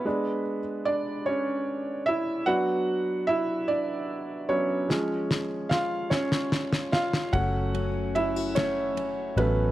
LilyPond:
<<
  \new Staff \with { instrumentName = "Felt piano" } { \time 6/8 \key fis \minor \tempo 4. = 49 b'8 r8 <d' d''>8 <cis' cis''>4 <e' e''>8 | <fis' fis''>4 <e' e''>8 <d' d''>4 <cis' cis''>8~ | <cis' cis''>8 r8 <eis' eis''>8 <cis' cis''>4 <eis' eis''>8 | <fis' fis''>4 <e' e''>8 <cis' cis''>4 <b b'>8 | }
  \new Staff \with { instrumentName = "Felt piano" } { \time 6/8 \key fis \minor <gis b d'>8 r2 r8 | <fis b d'>2~ <fis b d'>8 <fis b d'>8 | <eis gis cis'>4. r4. | <fis a cis'>8 r2 <fis a cis'>8 | }
  \new Staff \with { instrumentName = "Steel-string acoustic guitar" } { \time 6/8 \key fis \minor r2. | r2. | r2. | a8 cis'8 e'16 fis'16 a8 cis'8 a8 | }
  \new Staff \with { instrumentName = "Picked electric bass" } { \clef bass \time 6/8 \key fis \minor r2. | r2. | r2. | fis,,2~ fis,,8 a,,8 | }
  \new DrumStaff \with { instrumentName = "Drums" } \drummode { \time 6/8 r4. r4. | r4. r4. | sn8 sn8 sn8 sn16 sn16 sn16 sn16 sn16 sn16 | <bd cymr>8 cymr8 cymr8 <cymr sn>8 cymr8 cymr8 | }
>>